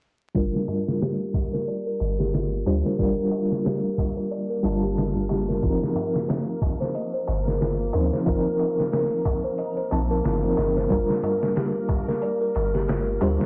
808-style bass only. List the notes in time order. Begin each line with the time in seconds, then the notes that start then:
0.36 G1
2.01 G1
2.67 D2
3.00 G1
4.65 G1
5.63 G1
7.29 G1
7.95 D2
8.27 G1
9.92 A#1
10.26 G1
10.58 G1
10.91 G1
12.56 G1
13.22 D2